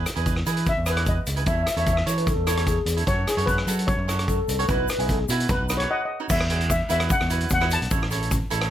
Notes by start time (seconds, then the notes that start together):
0.06 cross-stick, closed hi-hat, shaker
0.15 E2 E4 G#4 B4, closed hi-hat
0.26 kick, closed hi-hat, shaker
0.36 cross-stick
0.46 E3 E4 G#4 B4, closed hi-hat, shaker
0.57 closed hi-hat
0.66 E5, kick, closed hi-hat, shaker
0.77 E2
0.86 E4 G#4 B4, cross-stick, closed hi-hat, shaker
0.97 cross-stick, closed hi-hat
1.06 D#5, kick, closed hi-hat, shaker
1.26 C#2, closed hi-hat, shaker
1.36 E4 G#4 B4, closed hi-hat, shaker
1.46 E2 E4 A4 C#5 E5, kick, closed hi-hat, shaker
1.56 E5
1.63 E5, cross-stick, closed hi-hat
1.68 E5, shaker
1.76 E2 E4 A4 C#5 E5, closed hi-hat
1.86 E5, kick, closed hi-hat, shaker
1.93 E5, cross-stick
2.06 E3 E4 A4 C#5, closed hi-hat, shaker
2.18 B4, closed hi-hat
2.27 A4, kick, closed hi-hat, shaker
2.36 E2
2.47 E4 A4 C#5, cross-stick, closed hi-hat, shaker
2.57 cross-stick, closed hi-hat, shaker
2.66 G#4, kick, closed hi-hat, shaker
2.86 E2, closed hi-hat, shaker
2.97 E4 A4 C#5, closed hi-hat, shaker
3.06 F#2 F#4 A4 C#5, kick, closed hi-hat, shaker
3.27 G#4, cross-stick, closed hi-hat, shaker
3.37 F#2 F#4 A4 C#5, closed hi-hat
3.46 B4, kick, closed hi-hat, shaker
3.58 cross-stick
3.67 F#3 F#4 A4 C#5, closed hi-hat, shaker
3.79 closed hi-hat
3.87 C#5, kick, closed hi-hat, shaker
3.97 F#2
4.08 F#4 A4 C#5, cross-stick, closed hi-hat, shaker
4.19 cross-stick, closed hi-hat, shaker
4.28 A4, kick, closed hi-hat, shaker
4.48 C2, closed hi-hat, shaker
4.59 F#4 A4 C#5, closed hi-hat
4.68 B1 E4 F#4 B4, kick, closed hi-hat, shaker
4.88 B4, cross-stick, closed hi-hat, shaker
4.99 B1 E4 F#4 G#4, closed hi-hat
5.08 A4, kick, closed hi-hat, shaker
5.29 B2 E4 F#4 B4, closed hi-hat, shaker
5.40 closed hi-hat
5.49 B1 D#4 F#4 B4, kick, closed hi-hat, shaker
5.59 B1
5.69 D#4 F#4 B4, cross-stick, closed hi-hat, shaker
5.77 C#5, cross-stick, closed hi-hat
5.91 D#5 F#5
6.05 D#5
6.20 D#4 F#4 C#5
6.29 E2 E4 F#4 B4 E5, kick, crash, shaker
6.40 cross-stick
6.50 E4 F#4 G#4, closed hi-hat
6.61 closed hi-hat, shaker
6.70 E5, kick, closed hi-hat, shaker
6.89 E2 E4 F#4 B4 E5, closed hi-hat, shaker
7.00 cross-stick, closed hi-hat, shaker
7.10 F#5, kick, closed hi-hat, shaker
7.20 E2, cross-stick, shaker
7.30 E4 F#4 B4, closed hi-hat, shaker
7.40 closed hi-hat, shaker
7.49 E2, kick, closed hi-hat, shaker
7.54 F#5
7.61 E4 F#4 B4, cross-stick, shaker
7.70 A5, closed hi-hat, shaker
7.81 B1, closed hi-hat, shaker
7.91 A1 E4 A4 C#5, kick, closed hi-hat, shaker
8.03 cross-stick
8.11 E4 A4 C#5, closed hi-hat, shaker
8.21 closed hi-hat, shaker
8.31 kick, closed hi-hat, shaker
8.50 A1 E4 A4 C#5, closed hi-hat, shaker
8.61 cross-stick, closed hi-hat